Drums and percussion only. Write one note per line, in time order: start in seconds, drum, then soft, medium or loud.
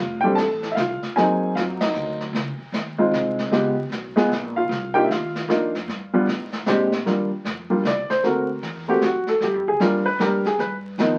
0.38 snare medium
0.38 hi-hat pedal medium
0.63 snare soft
0.77 snare medium
0.77 hi-hat pedal medium
1.03 snare soft
1.17 brush sweep soft
1.17 snare soft
1.56 snare medium
1.56 hi-hat pedal medium
1.81 snare medium
1.81 ride medium
1.95 hi-hat pedal medium
2.21 snare soft
2.35 brush sweep soft
2.35 snare soft
2.74 snare medium
2.74 hi-hat pedal medium
3.13 snare medium
3.13 hi-hat pedal soft
3.39 snare soft
3.52 brush sweep soft
3.52 snare medium
3.92 snare medium
3.92 hi-hat pedal medium
4.17 snare soft
4.32 snare soft
4.71 brush sweep soft
4.71 snare soft
4.96 kick soft
5.11 snare medium
5.11 hi-hat pedal medium
5.35 snare soft
5.50 snare medium
5.50 hi-hat pedal medium
5.75 snare soft
5.89 brush sweep medium
5.89 snare soft
6.28 snare soft
6.53 snare medium
6.66 snare medium
6.66 hi-hat pedal medium
6.92 snare soft
7.07 brush sweep soft
7.07 snare soft
7.45 snare medium
7.45 hi-hat pedal medium
7.85 snare medium
7.85 hi-hat pedal medium
8.10 snare soft
8.24 brush sweep soft
8.24 snare soft
8.63 snare soft
9.02 snare medium
9.02 hi-hat pedal medium
9.27 snare soft
9.41 brush sweep soft
9.41 snare soft
9.81 snare medium
9.81 hi-hat pedal medium
10.20 snare medium
10.20 hi-hat pedal medium
10.45 snare soft
10.59 brush sweep medium
10.59 snare soft
10.99 snare medium
10.99 hi-hat pedal medium